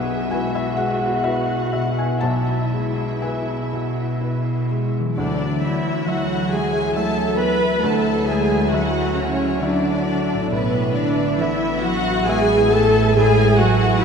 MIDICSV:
0, 0, Header, 1, 9, 480
1, 0, Start_track
1, 0, Tempo, 934579
1, 637, Tempo, 983607
1, 1114, Time_signature, 3, 2, 24, 8
1, 2557, Tempo, 888889
1, 5437, Tempo, 877193
1, 7373, End_track
2, 0, Start_track
2, 0, Title_t, "Violin section"
2, 0, Program_c, 0, 48
2, 2554, Note_on_c, 0, 74, 54
2, 2783, Note_off_c, 0, 74, 0
2, 2796, Note_on_c, 0, 76, 48
2, 3040, Note_off_c, 0, 76, 0
2, 3043, Note_on_c, 0, 78, 56
2, 3281, Note_on_c, 0, 80, 64
2, 3282, Note_off_c, 0, 78, 0
2, 3520, Note_off_c, 0, 80, 0
2, 3522, Note_on_c, 0, 81, 57
2, 3753, Note_off_c, 0, 81, 0
2, 3754, Note_on_c, 0, 83, 63
2, 3987, Note_off_c, 0, 83, 0
2, 3996, Note_on_c, 0, 81, 55
2, 4230, Note_on_c, 0, 80, 54
2, 4234, Note_off_c, 0, 81, 0
2, 4472, Note_on_c, 0, 78, 61
2, 4473, Note_off_c, 0, 80, 0
2, 4706, Note_on_c, 0, 73, 58
2, 4714, Note_off_c, 0, 78, 0
2, 4951, Note_off_c, 0, 73, 0
2, 4955, Note_on_c, 0, 74, 59
2, 5437, Note_off_c, 0, 74, 0
2, 5440, Note_on_c, 0, 71, 66
2, 5676, Note_off_c, 0, 71, 0
2, 5677, Note_on_c, 0, 74, 59
2, 5918, Note_off_c, 0, 74, 0
2, 5922, Note_on_c, 0, 76, 61
2, 6155, Note_on_c, 0, 78, 76
2, 6161, Note_off_c, 0, 76, 0
2, 6397, Note_on_c, 0, 80, 80
2, 6400, Note_off_c, 0, 78, 0
2, 6641, Note_on_c, 0, 81, 74
2, 6643, Note_off_c, 0, 80, 0
2, 6883, Note_off_c, 0, 81, 0
2, 6886, Note_on_c, 0, 80, 77
2, 7115, Note_on_c, 0, 78, 69
2, 7117, Note_off_c, 0, 80, 0
2, 7352, Note_on_c, 0, 76, 76
2, 7355, Note_off_c, 0, 78, 0
2, 7373, Note_off_c, 0, 76, 0
2, 7373, End_track
3, 0, Start_track
3, 0, Title_t, "Violin section"
3, 0, Program_c, 1, 48
3, 0, Note_on_c, 1, 76, 55
3, 632, Note_on_c, 1, 78, 49
3, 637, Note_off_c, 1, 76, 0
3, 1111, Note_off_c, 1, 78, 0
3, 1114, Note_on_c, 1, 76, 45
3, 2439, Note_off_c, 1, 76, 0
3, 2554, Note_on_c, 1, 76, 45
3, 5413, Note_off_c, 1, 76, 0
3, 5436, Note_on_c, 1, 76, 56
3, 7373, Note_off_c, 1, 76, 0
3, 7373, End_track
4, 0, Start_track
4, 0, Title_t, "Viola section"
4, 0, Program_c, 2, 48
4, 0, Note_on_c, 2, 68, 56
4, 152, Note_off_c, 2, 68, 0
4, 152, Note_on_c, 2, 66, 56
4, 1113, Note_off_c, 2, 66, 0
4, 1114, Note_on_c, 2, 64, 47
4, 2307, Note_off_c, 2, 64, 0
4, 2555, Note_on_c, 2, 62, 57
4, 2784, Note_off_c, 2, 62, 0
4, 2800, Note_on_c, 2, 64, 63
4, 3036, Note_on_c, 2, 66, 62
4, 3037, Note_off_c, 2, 64, 0
4, 3278, Note_off_c, 2, 66, 0
4, 3279, Note_on_c, 2, 68, 62
4, 3519, Note_off_c, 2, 68, 0
4, 3520, Note_on_c, 2, 69, 66
4, 3753, Note_off_c, 2, 69, 0
4, 3753, Note_on_c, 2, 71, 76
4, 3988, Note_on_c, 2, 69, 70
4, 3992, Note_off_c, 2, 71, 0
4, 4224, Note_on_c, 2, 68, 74
4, 4230, Note_off_c, 2, 69, 0
4, 4461, Note_on_c, 2, 66, 64
4, 4470, Note_off_c, 2, 68, 0
4, 4708, Note_off_c, 2, 66, 0
4, 4708, Note_on_c, 2, 61, 63
4, 4951, Note_on_c, 2, 62, 63
4, 4952, Note_off_c, 2, 61, 0
4, 5434, Note_off_c, 2, 62, 0
4, 5435, Note_on_c, 2, 59, 65
4, 5673, Note_off_c, 2, 59, 0
4, 5676, Note_on_c, 2, 62, 69
4, 5918, Note_off_c, 2, 62, 0
4, 5920, Note_on_c, 2, 64, 67
4, 6155, Note_on_c, 2, 66, 82
4, 6160, Note_off_c, 2, 64, 0
4, 6400, Note_off_c, 2, 66, 0
4, 6400, Note_on_c, 2, 68, 78
4, 6642, Note_on_c, 2, 69, 90
4, 6644, Note_off_c, 2, 68, 0
4, 6884, Note_off_c, 2, 69, 0
4, 6888, Note_on_c, 2, 68, 92
4, 7119, Note_off_c, 2, 68, 0
4, 7122, Note_on_c, 2, 66, 83
4, 7353, Note_on_c, 2, 64, 85
4, 7359, Note_off_c, 2, 66, 0
4, 7373, Note_off_c, 2, 64, 0
4, 7373, End_track
5, 0, Start_track
5, 0, Title_t, "Felt piano"
5, 0, Program_c, 3, 0
5, 0, Control_c, 3, 64, 127
5, 0, Note_on_c, 3, 35, 47
5, 0, Note_on_c, 3, 47, 38
5, 0, Note_on_c, 3, 78, 82
5, 134, Note_off_c, 3, 78, 0
5, 159, Note_on_c, 3, 80, 56
5, 161, Note_on_c, 3, 64, 39
5, 162, Note_on_c, 3, 71, 37
5, 268, Note_off_c, 3, 80, 0
5, 283, Note_on_c, 3, 76, 64
5, 295, Note_off_c, 3, 47, 0
5, 376, Note_off_c, 3, 64, 0
5, 377, Note_off_c, 3, 71, 0
5, 390, Note_off_c, 3, 76, 0
5, 394, Note_on_c, 3, 78, 69
5, 397, Note_on_c, 3, 56, 36
5, 620, Note_off_c, 3, 78, 0
5, 636, Note_on_c, 3, 76, 62
5, 640, Note_on_c, 3, 71, 37
5, 641, Note_on_c, 3, 64, 33
5, 780, Note_off_c, 3, 56, 0
5, 855, Note_off_c, 3, 71, 0
5, 856, Note_off_c, 3, 64, 0
5, 856, Note_off_c, 3, 76, 0
5, 875, Note_on_c, 3, 76, 58
5, 882, Note_on_c, 3, 47, 35
5, 986, Note_off_c, 3, 76, 0
5, 1000, Note_on_c, 3, 80, 47
5, 1093, Note_off_c, 3, 35, 0
5, 1108, Note_on_c, 3, 81, 72
5, 1109, Note_off_c, 3, 80, 0
5, 1118, Note_on_c, 3, 35, 39
5, 1123, Control_c, 3, 64, 0
5, 1210, Control_c, 3, 64, 127
5, 1265, Note_off_c, 3, 47, 0
5, 1364, Note_on_c, 3, 56, 29
5, 1582, Note_off_c, 3, 81, 0
5, 1603, Note_on_c, 3, 80, 40
5, 1607, Note_on_c, 3, 64, 32
5, 1611, Note_on_c, 3, 71, 33
5, 1753, Note_off_c, 3, 56, 0
5, 1830, Note_off_c, 3, 64, 0
5, 1832, Note_off_c, 3, 71, 0
5, 1849, Note_on_c, 3, 47, 30
5, 2067, Note_off_c, 3, 80, 0
5, 2086, Note_on_c, 3, 64, 29
5, 2087, Note_on_c, 3, 71, 31
5, 2231, Note_off_c, 3, 47, 0
5, 2306, Note_off_c, 3, 64, 0
5, 2307, Note_off_c, 3, 71, 0
5, 2330, Note_on_c, 3, 56, 28
5, 2541, Note_off_c, 3, 35, 0
5, 2559, Note_on_c, 3, 38, 42
5, 2561, Note_off_c, 3, 56, 0
5, 2568, Control_c, 3, 64, 0
5, 2653, Control_c, 3, 64, 127
5, 3029, Note_off_c, 3, 38, 0
5, 3043, Note_on_c, 3, 54, 37
5, 3046, Note_on_c, 3, 64, 34
5, 3048, Note_on_c, 3, 76, 39
5, 3499, Note_off_c, 3, 54, 0
5, 3500, Note_off_c, 3, 64, 0
5, 3501, Note_off_c, 3, 76, 0
5, 3516, Note_on_c, 3, 54, 33
5, 3521, Note_on_c, 3, 64, 35
5, 3523, Note_on_c, 3, 76, 37
5, 3970, Note_off_c, 3, 54, 0
5, 3973, Note_off_c, 3, 64, 0
5, 3974, Note_off_c, 3, 76, 0
5, 3995, Note_on_c, 3, 38, 50
5, 4003, Control_c, 3, 64, 0
5, 4080, Control_c, 3, 64, 127
5, 4461, Note_off_c, 3, 38, 0
5, 4477, Note_on_c, 3, 54, 39
5, 4478, Note_on_c, 3, 64, 38
5, 4482, Note_on_c, 3, 76, 43
5, 4936, Note_off_c, 3, 54, 0
5, 4936, Note_off_c, 3, 64, 0
5, 4938, Note_off_c, 3, 76, 0
5, 4958, Note_on_c, 3, 54, 36
5, 4961, Note_on_c, 3, 64, 37
5, 4961, Note_on_c, 3, 76, 41
5, 5417, Note_off_c, 3, 54, 0
5, 5418, Note_off_c, 3, 64, 0
5, 5418, Note_off_c, 3, 76, 0
5, 5444, Note_on_c, 3, 45, 53
5, 5447, Control_c, 3, 64, 0
5, 5521, Control_c, 3, 64, 127
5, 5908, Note_off_c, 3, 45, 0
5, 5929, Note_on_c, 3, 59, 43
5, 5930, Note_on_c, 3, 64, 43
5, 5932, Note_on_c, 3, 76, 46
5, 6385, Note_off_c, 3, 59, 0
5, 6385, Note_off_c, 3, 64, 0
5, 6387, Note_off_c, 3, 76, 0
5, 6409, Note_on_c, 3, 59, 44
5, 6412, Note_on_c, 3, 64, 38
5, 6413, Note_on_c, 3, 76, 47
5, 6867, Note_off_c, 3, 59, 0
5, 6868, Note_off_c, 3, 64, 0
5, 6869, Note_off_c, 3, 76, 0
5, 6891, Note_on_c, 3, 45, 64
5, 6894, Control_c, 3, 64, 0
5, 6979, Control_c, 3, 64, 127
5, 7347, Note_off_c, 3, 45, 0
5, 7373, End_track
6, 0, Start_track
6, 0, Title_t, "Harp"
6, 0, Program_c, 4, 46
6, 0, Note_on_c, 4, 47, 50
6, 0, Note_on_c, 4, 59, 39
6, 3, Note_on_c, 4, 64, 43
6, 161, Note_on_c, 4, 56, 39
6, 320, Note_on_c, 4, 71, 44
6, 481, Note_on_c, 4, 76, 44
6, 640, Note_off_c, 4, 71, 0
6, 955, Note_off_c, 4, 64, 0
6, 961, Note_on_c, 4, 64, 38
6, 1113, Note_off_c, 4, 47, 0
6, 1119, Note_on_c, 4, 47, 40
6, 1275, Note_off_c, 4, 59, 0
6, 1281, Note_on_c, 4, 59, 32
6, 1439, Note_off_c, 4, 64, 0
6, 1445, Note_on_c, 4, 64, 35
6, 1607, Note_on_c, 4, 68, 34
6, 1775, Note_on_c, 4, 71, 36
6, 1927, Note_off_c, 4, 76, 0
6, 1933, Note_on_c, 4, 76, 34
6, 2088, Note_off_c, 4, 56, 0
6, 2091, Note_off_c, 4, 71, 0
6, 2097, Note_on_c, 4, 71, 28
6, 2247, Note_off_c, 4, 68, 0
6, 2253, Note_on_c, 4, 68, 29
6, 2404, Note_off_c, 4, 64, 0
6, 2409, Note_on_c, 4, 64, 29
6, 2470, Note_on_c, 4, 52, 41
6, 2494, Note_on_c, 4, 54, 32
6, 2510, Note_off_c, 4, 64, 0
6, 2516, Note_on_c, 4, 64, 33
6, 2538, Note_on_c, 4, 66, 30
6, 2581, Note_off_c, 4, 47, 0
6, 2581, Note_off_c, 4, 59, 0
6, 2582, Note_off_c, 4, 68, 0
6, 2584, Note_off_c, 4, 71, 0
6, 3973, Note_off_c, 4, 76, 0
6, 4567, Note_off_c, 4, 52, 0
6, 4594, Note_off_c, 4, 54, 0
6, 4618, Note_off_c, 4, 64, 0
6, 4642, Note_off_c, 4, 66, 0
6, 5341, Note_on_c, 4, 45, 46
6, 5366, Note_on_c, 4, 59, 39
6, 5392, Note_on_c, 4, 64, 41
6, 5416, Note_on_c, 4, 71, 36
6, 7373, Note_off_c, 4, 45, 0
6, 7373, Note_off_c, 4, 59, 0
6, 7373, Note_off_c, 4, 64, 0
6, 7373, Note_off_c, 4, 71, 0
6, 7373, End_track
7, 0, Start_track
7, 0, Title_t, "French horn section"
7, 0, Program_c, 5, 60
7, 2559, Note_on_c, 5, 54, 47
7, 2560, Note_on_c, 5, 64, 48
7, 5415, Note_off_c, 5, 54, 0
7, 5416, Note_off_c, 5, 64, 0
7, 5441, Note_on_c, 5, 52, 55
7, 5443, Note_on_c, 5, 64, 55
7, 7373, Note_off_c, 5, 52, 0
7, 7373, Note_off_c, 5, 64, 0
7, 7373, End_track
8, 0, Start_track
8, 0, Title_t, "Cello section"
8, 0, Program_c, 6, 48
8, 0, Note_on_c, 6, 47, 63
8, 2440, Note_off_c, 6, 47, 0
8, 2556, Note_on_c, 6, 50, 53
8, 2785, Note_off_c, 6, 50, 0
8, 2800, Note_on_c, 6, 52, 55
8, 3040, Note_on_c, 6, 54, 55
8, 3042, Note_off_c, 6, 52, 0
8, 3280, Note_off_c, 6, 54, 0
8, 3281, Note_on_c, 6, 56, 52
8, 3517, Note_on_c, 6, 57, 54
8, 3520, Note_off_c, 6, 56, 0
8, 3755, Note_on_c, 6, 59, 49
8, 3756, Note_off_c, 6, 57, 0
8, 3993, Note_off_c, 6, 59, 0
8, 3993, Note_on_c, 6, 57, 58
8, 4228, Note_off_c, 6, 57, 0
8, 4230, Note_on_c, 6, 56, 60
8, 4473, Note_off_c, 6, 56, 0
8, 4474, Note_on_c, 6, 54, 54
8, 4714, Note_on_c, 6, 49, 57
8, 4715, Note_off_c, 6, 54, 0
8, 4955, Note_off_c, 6, 49, 0
8, 4955, Note_on_c, 6, 50, 51
8, 5436, Note_on_c, 6, 47, 59
8, 5437, Note_off_c, 6, 50, 0
8, 5674, Note_off_c, 6, 47, 0
8, 5675, Note_on_c, 6, 50, 60
8, 5916, Note_on_c, 6, 52, 53
8, 5917, Note_off_c, 6, 50, 0
8, 6158, Note_off_c, 6, 52, 0
8, 6158, Note_on_c, 6, 54, 60
8, 6399, Note_on_c, 6, 56, 63
8, 6401, Note_off_c, 6, 54, 0
8, 6638, Note_on_c, 6, 57, 61
8, 6643, Note_off_c, 6, 56, 0
8, 6881, Note_on_c, 6, 56, 68
8, 6882, Note_off_c, 6, 57, 0
8, 7120, Note_off_c, 6, 56, 0
8, 7121, Note_on_c, 6, 54, 75
8, 7358, Note_off_c, 6, 54, 0
8, 7373, End_track
9, 0, Start_track
9, 0, Title_t, "Double bass section"
9, 0, Program_c, 7, 48
9, 2559, Note_on_c, 7, 38, 51
9, 5415, Note_off_c, 7, 38, 0
9, 5436, Note_on_c, 7, 33, 61
9, 7373, Note_off_c, 7, 33, 0
9, 7373, End_track
0, 0, End_of_file